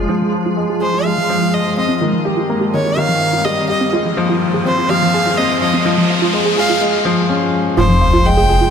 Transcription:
Already playing: grand piano F3 G#3 C#4 F4 G#4 C#5, ambient pad F3 G#3 G#4
0.09 detuned saw bass F1, grand piano F3, synth arpeggio sound F4, riser
0.21 synth arpeggio sound F3
0.34 synth arpeggio sound F5
0.46 synth arpeggio sound F4
0.57 grand piano G#3
0.70 synth arpeggio sound G#4
0.81 grand piano G#4, violin C5
0.94 ambient pad C4, synth arpeggio sound F4
1.05 grand piano G#3, synth arpeggio sound G4, violin F5
1.18 synth arpeggio sound F3
1.29 grand piano F3, synth arpeggio sound F5
1.42 synth arpeggio sound F4
1.54 violin D#5
1.65 synth arpeggio sound F5
1.77 grand piano C4, violin D#5, synth arpeggio sound F5
1.89 synth arpeggio sound C4
2.01 detuned saw bass D#1, ambient pad D#3, grand piano D#3, synth arpeggio sound F4
2.13 synth arpeggio sound F3, ambient pad G3
2.25 grand piano G4, synth arpeggio sound F5
2.37 synth arpeggio sound F4
2.50 grand piano A#3
2.61 synth arpeggio sound G4
2.65 ambient pad A#3
2.74 grand piano D#3, violin C#5
2.85 synth arpeggio sound F4, ambient pad G4
2.97 grand piano D#3, synth arpeggio sound G4, violin F5
3.09 synth arpeggio sound F3
3.21 synth arpeggio sound F5
3.33 synth arpeggio sound F4
3.45 grand piano G3, violin D#5
3.57 synth arpeggio sound F5
3.68 grand piano G4, violin D#5, synth arpeggio sound F5
3.81 synth arpeggio sound C4
3.93 detuned saw bass F1, ambient pad F3, grand piano G#3, synth arpeggio sound F4
4.05 synth arpeggio sound F3
4.17 grand piano F3, synth arpeggio sound F5
4.23 ambient pad G#3
4.30 synth arpeggio sound F4
4.39 ambient pad C4
4.54 synth arpeggio sound G#4
4.65 grand piano C4, violin C5
4.78 synth arpeggio sound F4, ambient pad G#4
4.90 grand piano F3, synth arpeggio sound G4, violin F5
5.02 synth arpeggio sound F3
5.14 grand piano G#4, synth arpeggio sound F5
5.26 synth arpeggio sound F4
5.37 grand piano C4, violin D#5
5.50 synth arpeggio sound F5
5.62 grand piano F3, violin D#5, synth arpeggio sound F5
5.74 synth arpeggio sound C4
5.85 detuned saw bass F1, grand piano F3, synth arpeggio sound F4
5.98 synth arpeggio sound F3
6.10 synth arpeggio sound F5
6.22 synth arpeggio sound F4
6.33 grand piano G#3
6.46 synth arpeggio sound G#4
6.57 grand piano G#4, violin F5
6.70 synth arpeggio sound F4
6.81 grand piano G#3
7.05 grand piano F3
7.29 grand piano C#4
7.77 detuned saw bass F1, grand piano F3, synth arpeggio sound F4, violin C5, sub drop
7.89 synth arpeggio sound F3
8.01 synth arpeggio sound F5
8.14 synth arpeggio sound F4
8.25 grand piano G#3, violin G5
8.37 synth arpeggio sound G#4
8.42 ambient pad C4
8.49 grand piano G#4
8.61 synth arpeggio sound F4

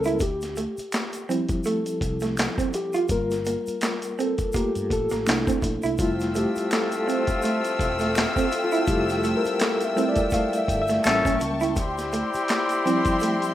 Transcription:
Already playing: fretless electric bass C#2, reed electric piano G3 A#3 C#4 A#4
0.00 reed electric piano A4, shaker
0.06 clean electric guitar E4, closed hi-hat
0.19 fretless electric bass D2, reed electric piano G4, kick, closed hi-hat, shaker
0.41 snare, closed hi-hat, shaker
0.56 clean electric guitar A3, closed hi-hat, shaker
0.77 muted fretless electric bass stroke, closed hi-hat, shaker
0.92 finger snap, snare, clap, closed hi-hat, shaker
1.13 closed hi-hat, shaker
1.29 reed electric piano F3 G3 C4 E4, clean electric guitar C4, closed hi-hat, shaker
1.49 kick, closed hi-hat, shaker
1.64 clean electric guitar A3, reed electric piano A4, closed hi-hat, shaker
1.86 closed hi-hat, shaker
2.01 fretless electric bass C2, muted clean electric guitar stroke, kick, closed hi-hat, shaker
2.20 clean electric guitar A3, snare, closed hi-hat, shaker
2.37 finger snap, snare, clap, closed hi-hat, shaker
2.58 clean electric guitar C4, kick, closed hi-hat, shaker
2.73 reed electric piano G4, muted clean electric guitar stroke, closed hi-hat, shaker
2.93 clean electric guitar F4, closed hi-hat, shaker
3.08 fretless electric bass G1, reed electric piano G3 A#3 F4 A#4, kick, closed hi-hat, shaker
3.31 snare, closed hi-hat, shaker
3.45 clean electric guitar A#3, closed hi-hat, shaker
3.67 muted fretless electric bass stroke, closed hi-hat, shaker
3.81 finger snap, snare, clap, closed hi-hat, shaker
4.02 closed hi-hat, shaker
4.19 clean electric guitar C4, reed electric piano A4, closed hi-hat, shaker
4.38 kick, closed hi-hat, shaker
4.53 reed electric piano A3 A#3 F4 G4, clean electric guitar A#3, kick, closed hi-hat, shaker
4.75 fretless electric bass G2, closed hi-hat, shaker
4.90 fretless electric bass A1, reed electric piano A4, muted clean electric guitar stroke, kick, closed hi-hat, shaker
5.10 fretless electric bass A1, clean electric guitar A#3, closed hi-hat, shaker
5.14 snare
5.27 fretless electric bass C2, reed electric piano A3 A#3 D4 E4, finger snap, snare, clap, closed hi-hat, shaker
5.47 clean electric guitar C4, kick, closed hi-hat, shaker
5.62 fretless electric bass A#1, muted clean electric guitar stroke, kick, closed hi-hat, shaker
5.82 fretless electric bass C2, clean electric guitar E4, closed hi-hat, shaker
5.98 fretless electric bass F1, horn section F3 A3 C4 F4, reed electric piano G3 A3 E4 F4, string section A4 E5 G5 E6, kick, closed hi-hat, shaker
6.20 snare, closed hi-hat, shaker
6.35 clean electric guitar A3, reed electric piano G4, closed hi-hat, shaker
6.56 muted fretless electric bass stroke, closed hi-hat, shaker
6.71 reed electric piano A4, finger snap, snare, clap, closed hi-hat, shaker
6.92 closed hi-hat, shaker
7.07 clean electric guitar C4, reed electric piano C5, closed hi-hat, shaker
7.27 kick, closed hi-hat, shaker
7.42 clean electric guitar A3, closed hi-hat, shaker
7.65 closed hi-hat, shaker
7.79 fretless electric bass E1, muted clean electric guitar stroke, kick, closed hi-hat, shaker
7.99 clean electric guitar A3, snare, closed hi-hat, shaker
8.15 reed electric piano A4, finger snap, snare, clap, closed hi-hat, shaker
8.36 clean electric guitar C4, kick, closed hi-hat, shaker
8.51 muted clean electric guitar stroke, closed hi-hat, shaker
8.64 reed electric piano F4
8.72 clean electric guitar E4, closed hi-hat, shaker
8.87 fretless electric bass F1, reed electric piano G3 A3 E4 G4, kick, closed hi-hat, shaker
9.09 snare, closed hi-hat, shaker
9.24 clean electric guitar A3, closed hi-hat, shaker
9.37 reed electric piano A#4
9.45 muted fretless electric bass stroke, closed hi-hat, shaker
9.60 reed electric piano A4, finger snap, snare, clap, closed hi-hat, shaker
9.80 closed hi-hat, shaker
9.85 reed electric piano E5
9.96 reed electric piano G3 A3 E4, clean electric guitar C4, closed hi-hat, shaker
10.09 reed electric piano D5
10.16 kick, closed hi-hat, shaker
10.31 clean electric guitar A3, reed electric piano F5, kick, closed hi-hat, shaker
10.53 closed hi-hat, shaker
10.58 reed electric piano E5
10.68 fretless electric bass G1, muted clean electric guitar stroke, kick, closed hi-hat, shaker
10.82 reed electric piano E5
10.88 clean electric guitar A3, snare, closed hi-hat, shaker
11.04 fretless electric bass A1, reed electric piano G3 A#3 C#4, horn section A3 C#4 E4 A4, string section A#3 A5 C#6, finger snap, snare, clap, closed hi-hat, shaker
11.25 fretless electric bass A1, clean electric guitar C#4, kick, closed hi-hat, shaker
11.40 fretless electric bass C#2, muted clean electric guitar stroke, closed hi-hat, shaker
11.60 clean electric guitar E4, closed hi-hat, shaker
11.76 fretless electric bass D2, horn section G3 C4 E4 G4, string section G4 E5 G5 C6, kick, closed hi-hat, shaker
11.98 snare, closed hi-hat, shaker
12.13 clean electric guitar A3, closed hi-hat, shaker
12.34 muted fretless electric bass stroke, closed hi-hat, shaker
12.48 finger snap, snare, clap, closed hi-hat, shaker
12.69 closed hi-hat, shaker
12.85 reed electric piano F3 G3 C4 E4, clean electric guitar C4, closed hi-hat, shaker
13.05 kick, closed hi-hat, shaker
13.20 clean electric guitar A3, closed hi-hat, shaker
13.42 closed hi-hat, shaker

